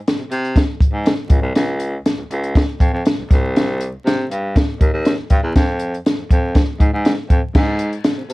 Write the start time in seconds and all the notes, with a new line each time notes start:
0.08 snare, closed hi-hat
0.18 C3
0.31 C3, closed hi-hat
0.45 closed hi-hat
0.56 kick, snare, closed hi-hat
0.80 kick, closed hi-hat
0.93 G#2
1.06 snare, closed hi-hat
1.30 C#2, kick, closed hi-hat
1.42 C2
1.55 C#2, snare, closed hi-hat
1.80 closed hi-hat
2.06 snare, closed hi-hat
2.17 C#2
2.31 C#2, closed hi-hat
2.44 closed hi-hat
2.55 kick, snare, closed hi-hat
2.80 F2, kick, closed hi-hat
2.93 F2
3.06 snare, closed hi-hat
3.19 C2
3.31 C2, kick, snare, closed hi-hat
3.56 snare, closed hi-hat
3.80 closed hi-hat
4.05 C3, snare, closed hi-hat
4.31 G2, closed hi-hat
4.56 kick, snare, closed hi-hat
4.80 D#2, kick, closed hi-hat
4.93 D#2
5.05 snare, closed hi-hat
5.30 G2, kick, closed hi-hat
5.43 E2
5.55 F2, kick, snare, closed hi-hat
5.79 closed hi-hat
5.94 closed hi-hat
6.06 snare, closed hi-hat
6.18 F2
6.31 F2, kick, closed hi-hat
6.55 kick, snare, closed hi-hat
6.80 G#2, kick, closed hi-hat
6.93 G#2
7.05 snare, closed hi-hat
7.30 F2, kick, closed hi-hat
7.55 G#2, kick, snare, crash
7.79 closed hi-hat
7.93 closed hi-hat
8.04 snare, closed hi-hat
8.17 C3
8.29 C3, closed hi-hat